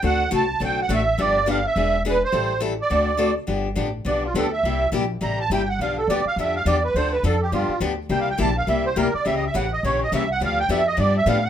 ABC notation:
X:1
M:4/4
L:1/8
Q:"Swing" 1/4=208
K:Gmix
V:1 name="Accordion"
^f2 a2 g f e2 | d2 f e3 B c- | c2 z d4 z | z4 d F A e- |
e2 z2 _b a g ^f | f A d f e f d B | c B A G F2 z2 | (3g f g a f e c _B d |
(3e _e =e ^f _e ^c e =e f | f g e _e d =e f ^f |]
V:2 name="Steel-string acoustic guitar"
[D,A,C^FA] z [D,A,CFA] z [D,A,CFA] z [D,A,CFA] z | [D,F,B,DG] z [D,F,B,DG] z [E,B,D^G] z [E,B,DG] z | [E,G,CEA] z [E,G,CEA] z [D,A,C^FA] z [D,A,CFA] z | [D,F,B,DG] z [D,F,B,DG] z [D,F,B,DG] z [D,F,B,DG] z |
[C,G,_B,EG] z [C,G,B,EG] z [C,G,B,EG] z [C,G,B,EG] z | [D,F,B,DG] z [D,F,B,DG] z [D,F,B,DG] z [D,F,B,DG] z | [D,F,CDA] z [D,F,CDA] z [D,F,B,DG] z [D,F,B,DG] z | [C,G,_B,EG] z [C,G,B,EG] z [C,G,B,EG] z [C,G,B,EG] z |
[^C,E,^A,^CG] z [C,E,A,CG] z [C,E,A,CG] z [C,E,A,CG] z | [D,F,B,DG] z [D,F,B,DG] z [D,F,B,DG] z [D,F,B,DG] z |]
V:3 name="Upright bass" clef=bass
D,,2 C,,2 B,,,2 A,,,2 | G,,,4 E,,,4 | A,,,4 D,,4 | G,,,2 A,,,2 B,,,2 D,,2 |
C,,2 _B,,,2 A,,,2 G,,,2 | B,,,2 D,, z F,,2 E,,2 | D,,2 F,,2 G,, z D,,2 | C,,2 _B,,,2 C,,2 D,, z |
^C,,2 A,,,2 ^A,,,2 =C,,2 | D,,2 F,,2 G,,2 A,,2 |]